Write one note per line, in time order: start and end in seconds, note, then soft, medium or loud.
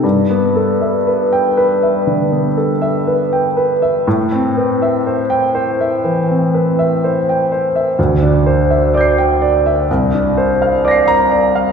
0.03 2.03 G2 medium
0.30 0.71 B3 soft
0.56 0.97 A4 soft
0.81 1.22 E5 soft
1.07 1.47 B4 soft
1.33 1.72 G5 medium
1.57 1.97 B4 medium
1.83 2.22 E5 soft
2.07 2.47 D3 soft
2.32 2.72 B3 soft
2.57 2.97 A4 soft
2.82 3.21 E5 soft
3.07 3.46 B4 soft
3.33 3.72 G5 soft
3.57 3.96 B4 soft
3.82 4.06 E5 soft
4.07 6.00 A2 medium
4.32 4.71 C4 medium
4.57 4.96 B4 soft
4.82 5.21 E5 soft
5.07 5.45 C5 soft
5.30 5.69 G5 medium
5.55 5.94 C5 medium
5.81 6.19 E5 soft
6.04 6.43 E3 soft
6.29 6.68 C4 soft
6.55 6.93 B4 soft
6.79 7.18 E5 medium
7.04 7.42 C5 soft
7.29 7.66 G5 soft
7.52 7.89 C5 soft
7.76 7.99 E5 soft
7.99 9.85 D2 medium
8.23 8.60 D4 medium
8.46 8.84 C5 soft
8.70 9.08 E5 soft
8.94 9.32 D5 medium
8.94 9.85 D6 soft
8.94 9.86 G6 soft
9.01 9.88 C7 soft
9.18 9.55 G5 medium
9.42 9.79 D5 medium
9.66 9.89 E5 soft
9.91 11.72 C2 medium
10.14 10.51 D4 soft
10.37 10.75 C5 medium
10.62 10.99 F5 medium
10.85 11.22 D5 medium
10.85 11.72 D6 soft
10.85 11.72 A#6 soft
10.91 11.72 C7 soft
11.08 11.45 A#5 medium
11.32 11.69 D5 medium
11.55 11.72 F5 medium